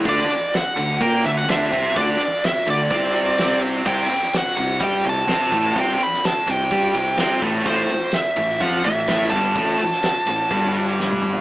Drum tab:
CC |----------------|----------------|x---------------|----------------|
RD |x-x-x-x-x-x-x-x-|x-x-x-x-x-x-x-x-|--x-x-x-x-x-x-x-|x-x-x-x-x-x-x-x-|
SD |----o-------o---|----o-------oo--|---oo-------o---|---oo-------o---|
T1 |----------------|----------------|----------------|----------------|
T2 |----------------|----------------|----------------|----------------|
FT |----------------|----------------|----------------|----------------|
BD |o-------o-----o-|o-------o-------|o-------o-----o-|o-------o-----o-|

CC |----------------|----------------|
RD |x-x-x-x-x-x-x-x-|x-x-x-x-x-x-----|
SD |----o-------oo--|---oo-------o---|
T1 |----------------|-------------o--|
T2 |----------------|--------------o-|
FT |----------------|---------------o|
BD |o-------o-----o-|o-------o-------|